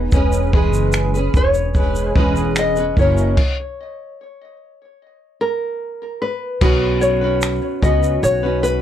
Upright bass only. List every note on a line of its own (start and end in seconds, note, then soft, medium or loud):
0.12 0.73 E1 loud
0.73 1.30 F#1 medium
1.34 2.11 E1 medium
2.16 2.92 E1 medium
2.97 3.34 F#1 medium
6.62 7.59 B1 loud
7.83 8.20 C#2 medium
8.23 8.82 B1 loud